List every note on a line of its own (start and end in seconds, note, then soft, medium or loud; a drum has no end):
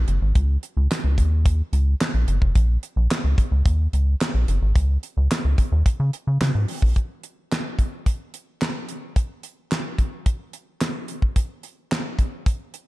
0.08 0.19 F#1 loud
0.08 closed hi-hat medium
0.22 0.33 G#1 loud
0.35 0.58 C#2 loud
0.35 kick loud
0.35 closed hi-hat medium
0.63 closed hi-hat medium
0.77 0.88 C#2 loud
0.91 snare loud
0.91 clap loud
0.91 closed hi-hat medium
1.04 1.19 C#2 medium
1.18 1.62 D#2 medium
1.18 kick medium
1.18 closed hi-hat medium
1.46 kick loud
1.46 closed hi-hat loud
1.73 1.95 C#2 loud
1.73 closed hi-hat medium
2.01 snare loud
2.01 clap loud
2.01 closed hi-hat medium
2.14 2.25 A#1 medium
2.28 2.39 F#1 loud
2.28 closed hi-hat medium
2.42 2.53 F1 loud
2.42 kick medium
2.55 2.78 A#1 loud
2.55 kick loud
2.55 closed hi-hat loud
2.83 closed hi-hat medium
2.96 3.08 A#1 loud
3.11 snare loud
3.11 clap loud
3.11 closed hi-hat medium
3.24 3.35 C#2 medium
3.38 kick loud
3.38 closed hi-hat medium
3.51 3.63 C#2 medium
3.66 3.88 D#2 loud
3.66 kick loud
3.66 closed hi-hat loud
3.93 4.15 C#2 medium
3.93 closed hi-hat medium
4.21 snare loud
4.21 clap loud
4.21 closed hi-hat medium
4.34 4.45 A#1 medium
4.48 4.59 F#1 loud
4.48 closed hi-hat medium
4.62 4.73 G#1 loud
4.75 4.98 C#2 loud
4.75 kick loud
4.75 closed hi-hat loud
5.03 closed hi-hat medium
5.17 5.28 C#2 loud
5.31 snare loud
5.31 clap loud
5.31 closed hi-hat medium
5.45 5.56 C#2 medium
5.58 kick medium
5.58 closed hi-hat medium
5.72 5.83 D#2 loud
5.86 kick loud
5.86 closed hi-hat loud
6.00 6.11 C#3 loud
6.13 closed hi-hat medium
6.27 6.38 C#3 medium
6.41 6.52 C#3 loud
6.41 snare loud
6.41 clap medium
6.41 closed hi-hat medium
6.55 6.66 G#2 medium
6.68 open hi-hat medium
6.82 6.93 A#1 loud
6.82 kick medium
6.96 kick medium
6.96 closed hi-hat medium
7.23 closed hi-hat medium
7.52 snare loud
7.52 clap loud
7.52 closed hi-hat medium
7.79 kick medium
7.79 closed hi-hat medium
8.06 kick loud
8.06 closed hi-hat medium
8.34 closed hi-hat medium
8.61 snare loud
8.61 clap medium
8.61 closed hi-hat medium
8.89 closed hi-hat medium
9.16 kick loud
9.16 closed hi-hat medium
9.43 closed hi-hat medium
9.71 snare loud
9.71 clap loud
9.71 closed hi-hat medium
9.98 kick medium
9.98 closed hi-hat medium
10.26 kick loud
10.26 closed hi-hat loud
10.53 closed hi-hat medium
10.81 snare loud
10.81 clap medium
10.81 closed hi-hat medium
11.08 closed hi-hat medium
11.22 kick medium
11.36 kick loud
11.36 closed hi-hat medium
11.63 closed hi-hat medium
11.92 snare loud
11.92 clap loud
11.92 closed hi-hat medium
12.19 kick medium
12.19 closed hi-hat medium
12.46 kick loud
12.46 closed hi-hat medium
12.74 closed hi-hat medium